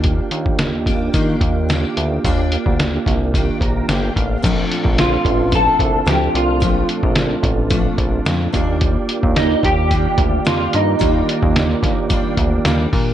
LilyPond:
<<
  \new Staff \with { instrumentName = "Clean electric guitar" } { \time 4/4 \key bes \major \tempo 4 = 110 r1 | r1 | r4 f'4 a'4 g'8 f'8~ | f'8 r2. r8 |
r4 ees'8 g'4. f'8 ees'8~ | ees'8 r2. r8 | }
  \new Staff \with { instrumentName = "Tonewheel organ" } { \time 4/4 \key bes \major << { r1 | r2 r8 bes''8 g''8 f''8 | r1 | r1 |
r1 | r1 | } \\ { <bes d' f' g'>1~ | <bes d' f' g'>2.~ <bes d' f' g'>8 r8 | <c' d' f' a'>1~ | <c' d' f' a'>2.~ <c' d' f' a'>8 <bes f' g' d''>8~ |
<bes f' g' d''>1~ | <bes f' g' d''>2.~ <bes f' g' d''>8 r8 | } >> }
  \new Staff \with { instrumentName = "Steel-string acoustic guitar" } { \time 4/4 \key bes \major <ees bes d' g'>4. <bes d' g'>8 <ees bes d' g'>4 <ees bes d' g'>4 | <bes d' g'>2 <ees bes d' g'>4 <ees bes d' g'>4 | <bes, f a d'>2 <bes, f a d'>4 <bes, f a d'>4 | <bes, f a d'>2 <bes, f a d'>4 <bes, f a d'>8 <ees g bes d'>8~ |
<ees g bes d'>2 <ees g bes d'>4 <ees g bes d'>4 | <ees g bes d'>2 <ees g bes d'>4 <ees g bes d'>4 | }
  \new Staff \with { instrumentName = "Analog synth bass" } { \clef bass \time 4/4 \key bes \major ees,8 ees,4. ees8 ees,4 d,8 | ees,8. d,8. c,4 bes,,8 g,,8 a,,8 | bes,,8 r16 bes,,8. a,,4 c,8 d,8 c,8 | bes,,8 r16 bes,,8. a,,4 bes,,8 f,8 ees,8~ |
ees,8 r16 ees,8. ees,4 d,8 f,8 g,8 | ees,8 r16 ees,8. ees,4 d,8 ees,8 bes,8 | }
  \new DrumStaff \with { instrumentName = "Drums" } \drummode { \time 4/4 <hh bd>8 hh16 bd16 <hh sn>8 <hh bd>8 <hh bd>8 <hh bd>8 <hh sn>8 hh8 | <hh bd>8 hh16 bd16 <hh sn>8 <hh bd sn>8 <hh bd>8 <hh bd>8 <hh sn>8 <hh bd>8 | <cymc hh bd>8 hh16 bd16 <hh sn>8 <hh bd>8 <hh bd>8 <hh bd>8 <hh sn>8 hh8 | <hh bd>8 hh16 bd16 <hh sn>8 <hh bd>8 <hh bd>8 <hh bd>8 <hh sn>8 <hh bd>8 |
<hh bd>8 hh16 bd16 <hh sn>8 <hh bd>8 <hh bd>8 <hh bd>8 <hh sn>8 hh8 | <hh bd>8 hh16 bd16 <hh sn>8 <hh bd sn>8 <hh bd>8 <hh bd>8 <hh sn>8 <hho bd>8 | }
>>